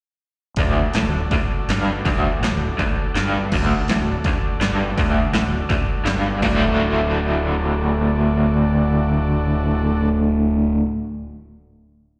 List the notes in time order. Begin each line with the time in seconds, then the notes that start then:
0.56 D1 D2 F#4 A4 D5, kick, open hi-hat
0.86 muted overdriven electric guitar stroke, muted fingered electric bass stroke
0.94 A1 A2, snare, open hi-hat
1.05 D1 D2
1.31 D1 D2, kick, open hi-hat
1.41 muted fingered electric bass stroke, muted overdriven electric guitar stroke
1.68 G1 G2, snare, open hi-hat
1.95 muted fingered electric bass stroke, muted overdriven electric guitar stroke
2.05 D1 D2, kick, open hi-hat
2.32 muted fingered electric bass stroke, muted overdriven electric guitar stroke
2.41 A1 A2, snare, open hi-hat
2.50 D1 D2
2.79 D1 D2, kick, open hi-hat
2.87 muted fingered electric bass stroke
2.91 muted overdriven electric guitar stroke
3.14 G1 G2, snare, open hi-hat
3.41 muted fingered electric bass stroke, muted overdriven electric guitar stroke
3.51 D1 D2 F#4 A4 D5, kick, crash
3.78 muted fingered electric bass stroke, muted overdriven electric guitar stroke
3.87 A1 A2, snare, open hi-hat
3.97 D1 D2
4.24 D1 D2, kick, open hi-hat
4.33 muted fingered electric bass stroke, muted overdriven electric guitar stroke
4.59 G1 G2, snare, open hi-hat
4.89 muted fingered electric bass stroke, muted overdriven electric guitar stroke
4.98 D1 D2, kick, open hi-hat
5.23 muted fingered electric bass stroke, muted overdriven electric guitar stroke
5.33 A1 A2, snare, open hi-hat
5.42 D1 D2
5.70 D1 D2, kick, open hi-hat
5.78 muted fingered electric bass stroke, muted overdriven electric guitar stroke
6.04 G1 G2, snare, open hi-hat
6.42 D1 D2 A2 D3 A3 F#4 A4 D5, kick, open hi-hat